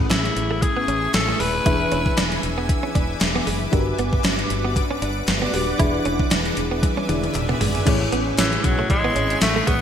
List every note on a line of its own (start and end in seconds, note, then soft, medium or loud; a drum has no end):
0.00 0.32 A2 medium
0.00 1.62 A3 medium
0.00 1.64 A3 medium
0.00 1.61 C#4 medium
0.00 1.61 E4 medium
0.00 1.62 G#4 medium
0.00 3.69 E5 medium
0.00 3.69 G#5 medium
0.00 1.64 C#6 medium
0.10 0.29 A1 loud
0.10 0.21 C#4 medium
0.10 0.63 E4 medium
0.10 snare loud
0.10 clap medium
0.10 closed hi-hat medium
0.25 muted clean electric guitar stroke soft
0.25 closed hi-hat soft
0.36 0.65 A1 medium
0.36 closed hi-hat medium
0.51 0.59 A3 medium
0.62 1.14 G#4 loud
0.62 muted clean electric guitar stroke soft
0.62 kick medium
0.62 closed hi-hat medium
0.77 0.85 B3 medium
0.88 1.07 A1 medium
0.88 0.99 C#4 medium
0.88 closed hi-hat medium
1.14 1.33 A1 medium
1.14 1.41 A4 loud
1.14 muted clean electric guitar stroke soft
1.14 snare loud
1.14 clap medium
1.14 closed hi-hat medium
1.28 1.37 A3 medium
1.40 1.59 D#1 medium
1.40 1.51 G#3 medium
1.40 2.43 B4 loud
1.40 open hi-hat medium
1.65 1.84 E1 loud
1.65 2.40 E3 medium
1.65 3.68 D4 medium
1.65 3.69 E4 medium
1.65 1.77 E4 medium
1.65 3.69 G#4 medium
1.65 7.83 B4 medium
1.65 3.70 B4 medium
1.65 7.83 D6 medium
1.65 kick loud
1.65 closed hi-hat medium
1.80 muted clean electric guitar stroke soft
1.92 2.10 E1 loud
1.92 2.03 C#4 medium
1.92 closed hi-hat medium
2.06 kick medium
2.18 2.36 E1 medium
2.18 2.28 D4 medium
2.18 snare loud
2.18 clap medium
2.18 closed hi-hat medium
2.32 muted clean electric guitar stroke soft
2.32 closed hi-hat soft
2.43 2.72 E1 loud
2.43 closed hi-hat medium
2.58 2.67 B3 medium
2.69 muted clean electric guitar stroke soft
2.69 kick medium
2.69 closed hi-hat medium
2.83 2.92 C#4 medium
2.95 3.14 E1 loud
2.95 3.06 D4 medium
2.95 kick medium
2.95 closed hi-hat medium
3.21 3.40 E1 loud
3.21 muted clean electric guitar stroke soft
3.21 snare loud
3.21 clap medium
3.21 closed hi-hat medium
3.35 3.44 B3 medium
3.47 3.66 F#1 medium
3.47 3.58 G#3 medium
3.47 open hi-hat medium
3.72 3.91 G1 loud
3.72 4.46 G2 medium
3.72 3.84 G3 medium
3.72 5.50 D4 medium
3.72 5.50 F#4 medium
3.72 5.50 G4 medium
3.72 3.80 A#4 medium
3.72 5.78 D5 medium
3.72 5.78 F#5 medium
3.72 kick loud
3.72 closed hi-hat medium
3.80 5.53 B4 medium
3.87 muted clean electric guitar stroke soft
3.98 4.17 G1 medium
3.98 4.10 B3 medium
3.98 closed hi-hat medium
4.13 kick medium
4.24 4.43 G1 loud
4.24 4.35 C#4 medium
4.24 snare loud
4.24 clap medium
4.24 closed hi-hat loud
4.39 muted clean electric guitar stroke soft
4.39 closed hi-hat soft
4.50 4.79 G1 medium
4.50 closed hi-hat medium
4.65 4.73 B3 medium
4.76 muted clean electric guitar stroke soft
4.76 kick medium
4.76 closed hi-hat medium
4.91 4.99 C#4 medium
5.02 5.21 G1 medium
5.02 5.13 D4 medium
5.02 closed hi-hat medium
5.27 5.46 G1 loud
5.27 muted clean electric guitar stroke soft
5.27 snare loud
5.27 clap medium
5.27 closed hi-hat medium
5.42 5.51 B3 medium
5.53 5.72 D#1 medium
5.53 5.65 G3 medium
5.53 5.77 D4 medium
5.53 5.80 F#4 medium
5.53 5.80 G4 medium
5.53 5.80 B4 medium
5.53 open hi-hat medium
5.78 5.98 E1 loud
5.78 6.53 E3 medium
5.78 7.06 D4 medium
5.78 7.06 E4 medium
5.78 5.90 E4 medium
5.78 7.07 G#4 medium
5.78 7.07 B4 medium
5.78 7.85 E5 medium
5.78 7.85 G#5 medium
5.78 kick loud
5.78 closed hi-hat medium
5.94 muted clean electric guitar stroke soft
6.05 6.24 E1 loud
6.05 6.16 C#4 medium
6.05 closed hi-hat medium
6.20 kick medium
6.31 6.50 E1 loud
6.31 6.42 D4 medium
6.31 snare loud
6.31 clap medium
6.31 closed hi-hat loud
6.45 muted clean electric guitar stroke soft
6.45 closed hi-hat soft
6.57 6.86 E1 medium
6.57 clap medium
6.57 closed hi-hat medium
6.71 6.80 B3 medium
6.83 muted clean electric guitar stroke soft
6.83 kick medium
6.83 closed hi-hat medium
6.83 high tom medium
6.97 7.06 C#4 medium
6.97 high tom medium
7.08 7.28 E1 medium
7.08 7.86 D4 medium
7.08 7.20 D4 medium
7.08 7.85 E4 medium
7.08 7.85 G#4 medium
7.08 7.87 D5 medium
7.08 closed hi-hat medium
7.08 mid tom medium
7.23 closed hi-hat soft
7.23 mid tom medium
7.34 7.54 E1 loud
7.34 muted clean electric guitar stroke soft
7.34 clap medium
7.34 closed hi-hat medium
7.34 mid tom medium
7.49 7.58 B3 medium
7.49 mid tom medium
7.61 7.79 G#1 medium
7.61 7.71 G#3 medium
7.61 floor tom medium
7.61 open hi-hat medium
7.75 floor tom medium
7.85 8.05 A1 loud
7.85 8.60 A2 medium
7.85 7.97 A3 medium
7.85 9.81 C#4 medium
7.85 9.81 E4 medium
7.85 9.81 G#4 medium
7.85 9.81 C#5 medium
7.85 9.81 E5 medium
7.85 9.81 G#5 medium
7.85 9.81 C#6 medium
7.85 kick loud
7.85 closed hi-hat medium
7.85 crash loud
8.01 muted clean electric guitar stroke soft
8.12 8.31 A1 medium
8.12 8.23 B3 medium
8.12 closed hi-hat medium
8.38 8.57 A1 loud
8.38 8.66 E3 medium
8.38 8.49 C#4 medium
8.38 snare loud
8.38 clap medium
8.38 closed hi-hat loud
8.38 tambourine medium
8.53 muted clean electric guitar stroke soft
8.53 closed hi-hat soft
8.64 8.83 B1 medium
8.64 8.90 F#3 medium
8.64 kick medium
8.64 closed hi-hat medium
8.79 8.87 A3 medium
8.90 9.08 A1 loud
8.90 9.38 G#3 loud
8.90 muted clean electric guitar stroke soft
8.90 kick loud
8.90 closed hi-hat medium
9.04 9.13 B3 medium
9.15 9.34 G#1 medium
9.15 9.27 C#4 medium
9.15 closed hi-hat medium
9.30 closed hi-hat medium
9.41 9.60 A1 loud
9.41 9.69 A3 loud
9.41 muted clean electric guitar stroke soft
9.41 snare loud
9.41 clap medium
9.41 closed hi-hat medium
9.41 tambourine medium
9.56 9.65 A3 medium
9.67 9.81 A1 loud
9.67 9.78 G#3 medium
9.67 9.81 B3 loud
9.67 kick medium
9.67 closed hi-hat medium